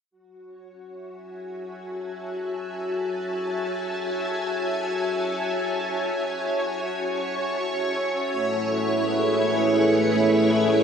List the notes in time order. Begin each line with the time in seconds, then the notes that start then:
0.11 F#4
0.41 C#5
0.88 E5
1.07 G#5
1.60 A5
8.32 A3
8.37 E4
8.65 B4
8.82 G#4